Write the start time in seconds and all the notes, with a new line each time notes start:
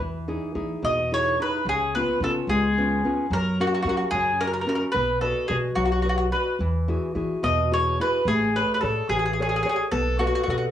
0.00 E2 E3
0.28 D#4 E4 G#4
0.55 E3 D#4 E4 G#4
0.82 E2 B2 D#5
1.11 D#4 E4 G#4 C#5
1.40 D#4 E4 G#4 B4
1.65 C#2 C#3 G#4
1.95 B3 C#4 F4 B4
2.20 C#3 B3 C#4 F4 A4
2.47 C#2 G#3 G#4
2.78 B3 C#4 F4
3.05 B3 C#4 F4
3.30 F#2 F#3 A#4
3.60 C#4 F#4 A#4
3.67 F#4
3.75 F#4
3.82 F#3 C#4 F#4
3.87 F#4 A#4
3.97 F#4
4.11 F#2 C#3 G#4
4.40 C#4 F#4 A#4
4.47 A#4
4.54 A#4
4.61 A#4
4.66 C#4 F#4 A#4
4.75 A#4
4.92 B1 B3 B4
5.21 F#4 A4 B4 D#5
5.48 B2 F#4 G#4 B4 D#5
5.75 B1 F#3 F#4
5.85 F#4
5.92 F#4
6.02 F#4 B4 D#5
6.09 F#4
6.18 F#4
6.32 F#4 B4 D#5
6.59 E2 E3
6.88 E4 F#4 G#4
7.15 E3 E4 F#4 G#4
7.43 E2 B2 D#5
7.71 E4 F#4 G#4 C#5
8.00 E4 F#4 G#4 B4
8.25 A1 A3 G#4
8.56 G#4 A4 B4 C#5
8.74 B4
8.81 A2 G#4 A4 C#5
9.09 A1 E3 G#4
9.19 G#4
9.25 G#4
9.33 G#4
9.39 G#4 A4 C#5
9.49 G#4
9.56 G#4
9.63 G#4 A4 C#5
9.69 G#4
9.76 G#4
9.91 B1 B3 A4
10.19 F#4 A4 B4 D#5
10.27 F#4
10.35 F#4
10.43 F#4
10.47 B2 F#4 A4 B4 D#5
10.58 F#4